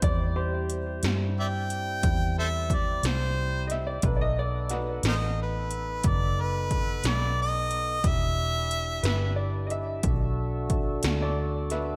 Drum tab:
HH |x-xx-xx-xx-x|x-xx-xx-xx-x|x-xx-xx-xx-x|
SD |---o-----o-o|--oo-----o--|---o-----o-o|
BD |o-----o-o---|o-----o-o---|o-----o-o---|